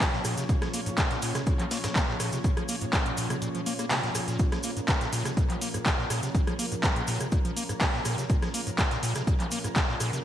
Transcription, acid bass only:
0.00 0.05 C#3 loud
0.13 0.20 A#2 medium
0.25 0.35 A#2 medium
0.38 0.44 C3 medium
0.49 0.56 A#2 medium
0.62 0.68 F3 medium
0.74 0.81 A#3 medium
0.86 0.90 G#2 medium
0.98 1.02 C#3 loud
1.11 1.17 A#2 medium
1.22 1.33 A#2 medium
1.35 1.42 C3 medium
1.47 1.54 A#2 medium
1.59 1.66 F3 medium
1.71 1.78 A#3 medium
1.84 1.88 G#2 medium
1.96 2.00 C#3 loud
2.08 2.15 A#2 medium
2.20 2.30 A#2 medium
2.33 2.39 C3 medium
2.44 2.51 A#2 medium
2.57 2.63 F3 medium
2.69 2.76 A#3 medium
2.81 2.85 G#2 medium
2.93 2.97 C#3 loud
3.06 3.12 A#2 medium
3.18 3.28 A#2 medium
3.30 3.37 C3 medium
3.42 3.49 A#2 medium
3.55 3.61 F3 medium
3.66 3.73 A#3 loud
3.79 3.85 A#3 loud
3.91 4.01 C3 medium
4.03 4.10 A#2 medium
4.15 4.19 A#2 medium
4.28 4.37 A#2 loud
4.52 4.59 F3 medium
4.64 4.71 A#3 medium
4.77 4.80 G#2 medium
4.88 4.92 C#3 loud
5.01 5.07 A#2 medium
5.13 5.23 A#2 loud
5.25 5.32 C3 medium
5.37 5.44 A#2 medium
5.50 5.56 F3 medium
5.61 5.68 A#3 medium
5.74 5.78 G#2 medium
5.86 5.90 C#3 loud
5.98 6.05 A#2 medium
6.10 6.21 A#2 loud
6.23 6.29 C3 medium
6.35 6.42 A#2 medium
6.47 6.54 F3 medium
6.59 6.66 A#3 medium
6.72 6.76 G#2 medium
6.83 6.88 C#3 loud
6.96 7.02 A#2 medium
7.08 7.18 A#2 loud
7.20 7.27 C3 medium
7.32 7.39 A#2 medium
7.45 7.51 F3 medium
7.56 7.64 A#3 medium
7.69 7.73 G#2 medium
7.81 7.85 C#3 loud
7.94 8.00 A#2 medium
8.05 8.16 A#2 loud
8.18 8.24 C3 medium
8.30 8.37 A#2 medium
8.42 8.49 F3 medium
8.54 8.61 A#3 medium
8.67 8.71 G#2 medium
8.78 8.83 C#3 loud
8.91 8.98 A#2 medium
9.03 9.13 A#2 loud
9.16 9.22 C3 medium
9.27 9.34 A#2 medium
9.40 9.46 F3 medium
9.52 9.59 A#3 medium
9.64 9.68 G#2 medium
9.76 9.80 C#3 loud
9.89 9.95 A#2 medium
10.00 10.11 A#2 loud
10.13 10.20 C3 medium

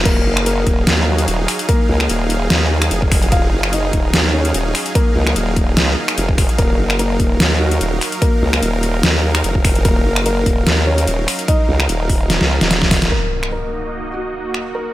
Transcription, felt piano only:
0.06 0.42 A#3 medium
0.06 0.42 A#4 loud
0.46 1.00 A#3 medium
0.46 1.00 A#4 medium
1.07 1.61 F#3 medium
1.07 1.61 F#4 medium
1.69 3.24 A#3 medium
1.69 3.24 A#4 medium
3.32 3.69 F4 medium
3.32 3.69 F5 loud
3.73 4.26 D#4 medium
3.73 4.26 D#5 medium
4.34 4.88 C#4 medium
4.34 4.88 C#5 loud
4.95 6.51 A#3 medium
4.95 6.51 A#4 loud
6.59 6.95 A#3 medium
6.59 6.95 A#4 loud
6.99 7.53 A#3 medium
6.99 7.53 A#4 medium
7.61 8.14 F#3 medium
7.61 8.14 F#4 medium
8.22 9.77 A#3 medium
8.22 9.77 A#4 loud
9.85 10.22 A#3 medium
9.85 10.22 A#4 loud
10.26 10.80 A#3 medium
10.26 10.80 A#4 loud
10.87 11.41 C#4 medium
10.87 11.41 C#5 medium
11.48 13.04 D#4 medium
11.48 13.04 D#5 medium
13.12 13.49 A#4 medium
13.52 14.06 A#4 medium
14.14 14.67 F#4 medium
14.75 14.94 A#4 medium

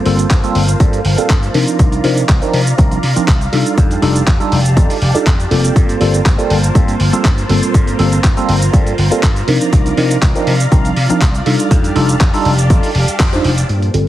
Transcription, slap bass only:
0.06 0.24 G1 medium
0.31 0.40 G2 medium
0.55 0.73 G1 medium
0.80 0.98 G2 medium
1.05 1.14 G1 medium
1.18 muted slap bass stroke soft
1.30 1.48 G2 medium
1.54 1.64 C3 medium
1.79 1.97 C2 loud
2.04 2.22 C3 medium
2.29 2.38 C2 medium
2.54 2.72 C3 medium
2.79 2.97 C2 medium
3.03 3.13 C3 medium
3.17 muted slap bass stroke soft
3.28 3.46 C2 medium
3.53 3.62 C3 medium
3.78 3.96 F2 loud
4.02 4.20 F1 medium
4.27 4.37 F2 loud
4.52 4.78 F1 medium
4.77 4.86 F2 medium
5.02 5.11 F1 medium
5.15 muted slap bass stroke soft
5.26 5.44 F2 medium
5.51 5.69 F1 medium
5.76 5.94 G2 loud
6.01 6.19 G1 medium
6.26 6.35 G2 medium
6.50 6.68 G1 medium
6.75 6.93 G2 medium
7.00 7.09 G1 medium
7.25 7.43 G2 medium
7.50 7.59 G1 medium
7.74 7.92 G2 loud
7.99 8.17 G1 loud
8.24 8.33 G2 medium
8.49 8.67 G1 medium
8.74 8.92 G2 medium
8.98 9.08 G1 medium
9.23 9.41 G2 medium
9.48 9.57 C3 medium
9.73 9.91 C2 loud
9.97 10.16 C3 medium
10.22 10.32 C2 medium
10.47 10.65 C3 medium
10.72 10.90 C2 medium
10.97 11.06 C3 medium
11.10 muted slap bass stroke soft
11.21 11.39 C2 medium
11.46 11.55 C3 medium
11.71 11.89 F2 loud
11.96 12.14 F1 medium
12.21 12.30 F2 loud
12.45 12.72 F1 medium
12.70 12.80 F2 medium
12.95 13.04 F1 medium
13.20 13.38 F2 medium
13.45 13.63 F1 medium
13.69 13.87 G2 medium
13.94 14.08 G1 medium

